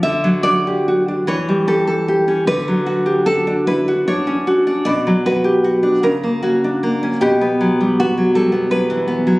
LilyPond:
\new Staff \with { instrumentName = "Nylon-string guitar" } { \time 6/8 \key d \major \tempo 4. = 51 << { e''8 d''4 cis''8 a'4 | b'4 a'8 b'8 cis''4 | d''8 b'4 ais'8 fis'4 | g'4 fis'8 a'8 b'4 | } \\ { d16 fis16 fis'16 g'16 fis'16 d'16 e16 g16 g'16 a'16 g'16 cis'16 | d16 fis16 fis'16 g'16 fis'16 d'16 e'16 fis'16 d'16 cis'16 fis'16 d'16 | b,16 fis16 fis'16 g'16 fis'16 d'16 cis16 ais16 cis'16 d'16 ais16 cis'16 | b,16 b16 fis16 g16 b16 fis16 g16 b16 fis16 e16 b16 fis16 | } >> }